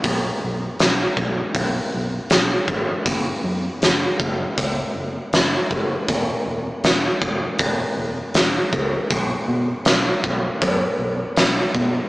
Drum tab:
HH |o-o-o-o-|o-o-o-o-|o-o-o-o-|o-o-o-o-|
SD |--o---o-|--o---o-|--o---o-|--o---o-|
BD |o--oo--o|o--oo--o|o--oo--o|o--oo--o|